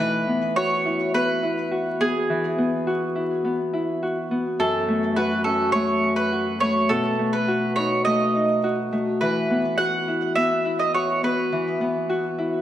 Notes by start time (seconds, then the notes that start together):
Already playing: A3 D#4 F#4
0.00 E3 B4
0.27 B3
0.56 F#4 C#5
0.85 E4
1.14 B3 B4
1.43 E4
1.71 F#4
2.01 B3 G#4
2.29 E3
2.58 B3
2.87 F#4
3.15 E4
3.45 B3
3.73 E4
4.03 F#4
4.31 B3
4.59 F#2 A4
4.88 A3
5.16 F#4 B4
5.44 C#4 A4
5.72 A3 C#5
6.03 C#4
6.16 B4
6.32 F#4
6.60 A3 C#5
6.89 B2 A4
7.19 A3
7.33 B4
7.48 F#4
7.76 D#4 C#5
8.05 A3 D#5
8.35 D#4
8.64 F#4
8.93 A3
9.21 E3 B4
9.50 B3
9.78 F#4 F#5
10.08 E4
10.36 B3 E5
10.65 E4
10.79 D#5
10.94 F#4 C#5
11.23 B3 B4
11.52 E3
11.81 B3
12.10 F#4
12.38 E4